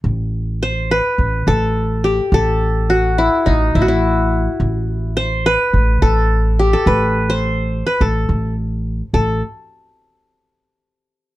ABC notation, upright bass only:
X:1
M:4/4
L:1/8
Q:1/4=106
K:none
V:1 name="Upright bass" clef=bass
A,,,4 A,,, A,,,3 | A,,,4 A,,, A,,,3 | A,,,4 A,,, A,,,3 | A,,,4 A,,, A,,,3 |
A,,, z6 z |]